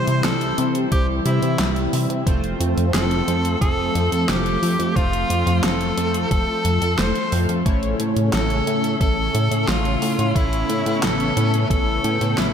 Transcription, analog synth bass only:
0.08 0.22 C3 loud
0.24 0.53 C2 medium
0.58 0.87 C3 loud
0.92 1.21 C2 medium
1.26 1.40 C3 loud
1.42 1.57 C3 medium
1.59 1.88 C2 medium
1.93 2.07 C3 loud
2.10 2.24 C3 medium
2.27 2.55 F1 loud
2.60 2.75 F2 medium
2.77 2.92 F2 loud
2.94 3.23 F1 medium
3.28 3.56 F2 loud
3.61 3.90 F1 medium
3.95 4.10 F2 loud
4.12 4.26 F2 medium
4.29 4.58 F1 medium
4.63 4.77 F2 loud
4.79 4.94 F2 medium
4.96 5.25 F1 loud
5.30 5.44 F2 medium
5.47 5.61 F2 loud
5.63 5.92 F1 medium
5.97 6.26 F2 loud
6.31 6.45 F1 loud
6.65 6.79 F2 loud
6.82 6.96 F2 medium
6.99 7.13 F1 medium
7.32 7.47 F2 loud
7.49 7.64 F2 loud
7.66 7.95 A1 loud
8.00 8.14 A2 medium
8.16 8.31 A2 loud
8.33 8.62 A1 medium
8.67 8.96 A2 loud
9.01 9.30 A1 medium
9.35 9.49 A2 loud
9.51 9.66 A2 medium
9.68 9.97 A1 medium
10.02 10.16 A2 loud
10.19 10.33 A2 medium
10.36 10.64 A1 loud
10.69 10.84 A2 medium
10.86 11.01 A2 loud
11.03 11.32 A1 medium
11.37 11.66 A2 loud
11.70 11.99 A1 medium
12.04 12.19 A2 loud
12.21 12.35 A2 medium
12.38 12.53 A1 medium

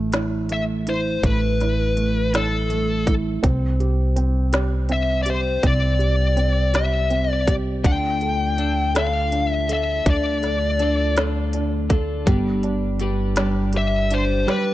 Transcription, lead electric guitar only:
0.52 0.62 E5 medium
0.89 1.25 C5 medium
1.26 2.31 B4 medium
2.36 3.13 A4 medium
4.92 5.19 E5 medium
5.23 5.28 D5 medium
5.30 5.66 C5 medium
5.67 6.75 D5 medium
6.75 7.32 E5 medium
7.32 7.54 D5 medium
7.86 8.92 G5 medium
8.98 9.50 F5 medium
9.50 9.73 E5 medium
9.73 10.09 E5 medium
10.10 11.15 D5 medium
13.77 14.14 E5 loud
14.14 14.50 C5 medium
14.50 14.74 B4 medium

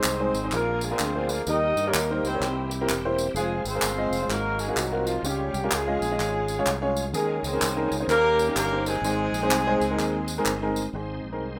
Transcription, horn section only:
0.00 0.52 C4 medium
0.00 0.49 D#4 medium
0.00 0.48 G#4 medium
0.00 0.52 C5 medium
0.53 0.82 A#3 medium
0.53 1.44 D4 medium
0.53 0.90 F4 medium
0.53 0.82 A#4 loud
0.83 0.90 G#3 medium
0.83 0.90 G#4 medium
0.91 1.29 C4 medium
0.91 1.43 F4 medium
0.91 1.43 G#4 medium
0.91 1.29 C5 loud
1.30 1.47 A#3 medium
1.30 1.47 A#4 loud
1.49 1.86 D#4 loud
1.49 1.86 G4 medium
1.49 1.86 A#4 medium
1.49 1.86 D#5 loud
1.87 2.25 A#3 medium
1.87 2.38 D#4 medium
1.87 2.25 G4 medium
1.87 2.25 A#4 loud
2.26 2.69 C4 medium
2.26 3.15 E4 medium
2.26 3.16 G4 medium
2.26 2.69 C5 loud
3.36 3.63 G#3 medium
3.36 3.67 C4 medium
3.36 3.66 F4 medium
3.36 3.63 G#4 loud
3.67 4.31 C4 loud
3.67 4.28 F4 medium
3.67 4.27 G#4 medium
3.67 4.31 C5 loud
4.30 4.60 A#3 medium
4.30 5.21 D#4 medium
4.30 4.76 F#4 medium
4.30 4.60 A#4 loud
4.60 4.77 G#3 medium
4.60 4.77 G#4 loud
4.77 5.07 F#3 medium
4.77 5.07 F#4 medium
5.06 5.23 F3 medium
5.06 5.23 F4 medium
5.24 5.72 G3 loud
5.24 5.72 C#4 medium
5.24 5.72 G4 loud
5.73 6.97 G#3 medium
5.73 6.93 C#4 medium
5.73 6.93 F4 medium
5.73 6.97 G#4 medium
7.14 7.42 G#3 medium
7.14 8.05 C#4 medium
7.14 7.42 G#4 medium
7.45 7.92 C4 loud
7.45 8.06 G#4 medium
7.45 7.92 C5 loud
8.10 8.53 A#3 loud
8.10 9.00 C#4 medium
8.10 9.01 G4 medium
8.10 8.53 A#4 loud
8.57 8.84 A#3 loud
8.57 8.84 A#4 loud
8.86 10.76 G#3 loud
8.86 10.72 C4 medium
8.86 10.72 D#4 medium
8.86 10.76 G#4 loud

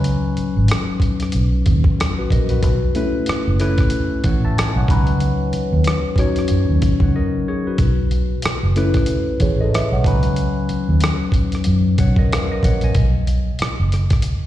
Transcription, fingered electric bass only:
0.00 0.16 C#2 medium
0.38 muted fingered electric bass stroke soft
0.57 0.67 G#1 medium
1.35 1.61 B1 medium
1.67 1.82 D#2 medium
2.31 2.63 A#1 medium
2.63 3.17 B1 medium
3.28 muted fingered electric bass stroke soft
3.47 3.74 F#1 medium
4.25 4.51 A1 medium
4.76 4.87 B1 medium
4.89 5.31 C#2 medium
5.54 muted fingered electric bass stroke soft
5.73 5.83 D#2 medium
6.51 6.66 F#2 medium
6.69 6.80 D#2 medium
7.01 7.12 C#2 medium
7.79 8.33 B1 medium
8.45 muted fingered electric bass stroke soft
8.63 8.90 F#1 medium
9.41 9.68 A1 medium
9.92 10.05 B1 medium
10.05 10.48 C#2 medium
10.70 muted fingered electric bass stroke soft
10.89 11.00 D#2 medium
11.67 11.93 F#2 medium
11.99 12.14 B1 medium
12.63 12.90 A#1 medium
12.96 13.49 B1 loud
13.60 muted fingered electric bass stroke soft
13.80 14.06 F#1 medium

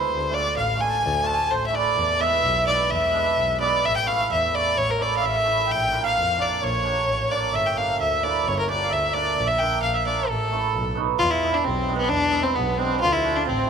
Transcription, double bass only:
0.09 0.37 D2 medium
0.56 0.84 A1 medium
1.03 1.31 D2 loud
1.49 1.77 A1 medium
1.96 2.24 E2 loud
2.41 2.70 B1 medium
2.88 3.17 E2 loud
3.35 3.64 B1 medium
3.83 4.11 A1 medium
4.29 4.57 E2 medium
4.75 5.03 A1 medium
5.22 5.50 A1 medium
5.69 5.96 A#1 medium
6.15 6.42 F2 medium
6.61 6.89 A#1 loud
7.06 7.34 A1 medium
7.52 7.80 G1 medium
7.98 8.26 D2 medium
8.45 8.73 G1 loud
8.91 9.18 D2 medium
9.36 9.64 A#1 loud
9.82 10.10 A#1 medium
10.28 10.55 A1 medium
10.74 11.01 B1 medium
11.19 11.46 E2 loud
11.65 11.92 B1 loud
12.10 12.37 E2 loud
12.56 12.83 B1 loud
13.02 13.29 D2 loud
13.47 13.70 A1 loud

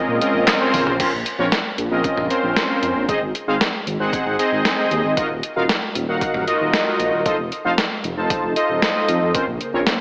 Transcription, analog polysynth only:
0.00 0.18 C4 medium
0.00 0.18 C#4 medium
0.00 0.18 F4 medium
0.00 0.18 A#4 medium
0.00 0.18 D#5 medium
0.22 0.58 C4 medium
0.22 0.58 C#4 medium
0.22 0.58 F4 medium
0.22 0.58 A#4 medium
0.22 0.58 D#5 medium
0.61 0.97 C4 medium
0.61 0.97 C#4 medium
0.61 0.97 F4 medium
0.61 0.97 A#4 medium
0.61 0.97 C5 medium
1.00 1.11 C4 medium
1.00 1.11 C#4 medium
1.00 1.11 F4 medium
1.00 1.11 A#4 medium
1.00 1.11 C5 loud
1.39 1.46 C4 loud
1.39 1.46 C#4 medium
1.39 1.46 F4 medium
1.39 1.46 A#4 medium
1.39 1.46 C#5 loud
1.91 2.27 C4 medium
1.91 2.27 C#4 medium
1.91 2.27 F4 medium
1.91 2.27 A#4 medium
1.91 2.27 D#5 medium
2.30 2.66 C4 medium
2.30 2.66 C#4 medium
2.30 2.66 F4 medium
2.30 2.66 A#4 medium
2.30 2.66 C5 medium
2.69 3.05 C4 medium
2.69 3.05 C#4 medium
2.69 3.05 F4 medium
2.69 3.05 A#4 medium
2.69 3.05 C5 medium
3.08 3.19 C4 medium
3.08 3.19 D#4 medium
3.08 3.19 G#4 medium
3.08 3.19 C5 medium
3.08 3.19 D#5 loud
3.48 3.54 C4 loud
3.48 3.54 D#4 medium
3.48 3.54 G#4 medium
3.48 3.54 C5 medium
3.48 3.54 F5 loud
4.00 4.36 C4 medium
4.00 4.36 D#4 medium
4.00 4.36 G#4 medium
4.00 4.36 C5 medium
4.00 4.36 F#5 medium
4.39 4.75 C4 medium
4.39 4.75 D#4 medium
4.39 4.75 G#4 medium
4.39 4.75 C5 medium
4.39 4.75 D#5 medium
4.78 5.14 C4 medium
4.78 5.14 D#4 medium
4.78 5.14 G#4 medium
4.78 5.14 C5 medium
4.78 5.14 D#5 medium
5.17 5.28 D#4 medium
5.17 5.28 F4 medium
5.17 5.28 F#4 medium
5.17 5.28 A#4 medium
5.17 5.28 D#5 loud
5.56 5.63 D#4 loud
5.56 5.63 F4 medium
5.56 5.63 F#4 medium
5.56 5.63 A#4 medium
5.56 5.63 F5 loud
6.08 6.44 D#4 medium
6.08 6.44 F#4 medium
6.08 6.45 A#4 medium
6.08 6.45 F5 medium
6.08 6.45 F#5 medium
6.47 6.84 D#4 medium
6.47 6.84 F4 medium
6.47 6.84 F#4 medium
6.47 6.84 A#4 medium
6.47 6.84 D#5 loud
6.87 7.23 D#4 medium
6.87 7.23 F4 medium
6.87 7.23 F#4 medium
6.87 7.23 A#4 medium
6.87 7.23 D#5 medium
7.26 7.36 D#4 medium
7.26 7.36 F4 medium
7.26 7.36 A4 medium
7.26 7.36 C5 medium
7.26 7.37 D#5 loud
7.65 7.72 D#4 loud
7.65 7.72 F4 medium
7.65 7.72 A4 medium
7.65 7.72 C5 medium
7.65 7.72 F5 loud
8.17 8.53 D#4 medium
8.17 8.53 F4 medium
8.17 8.53 A4 medium
8.17 8.53 C5 medium
8.17 8.53 A5 medium
8.56 8.92 D#4 medium
8.56 8.92 F4 medium
8.56 8.92 A4 medium
8.56 8.92 C5 medium
8.56 8.92 D#5 loud
8.95 9.31 D#4 medium
8.95 9.31 F4 medium
8.95 9.31 A4 medium
8.95 9.31 C5 medium
8.95 9.31 D#5 medium
9.35 9.45 C4 medium
9.35 9.45 C#4 medium
9.35 9.45 F4 medium
9.35 9.45 A#4 medium
9.35 9.45 C5 loud
9.74 9.80 C4 loud
9.74 9.80 C#4 medium
9.74 9.80 F4 medium
9.74 9.80 A#4 medium
9.74 9.80 C#5 loud

